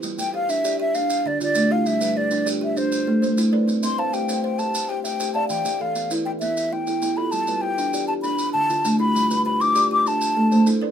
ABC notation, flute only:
X:1
M:12/8
L:1/8
Q:3/8=132
K:Gmix
V:1 name="Flute"
z g f e2 e f2 d d2 f | e2 d2 z e c4 z2 | z c' a g2 g a2 g g2 a | g2 f2 z g e2 g3 b |
a2 g3 a b2 a3 b- | b2 b d'2 d' a4 z2 |]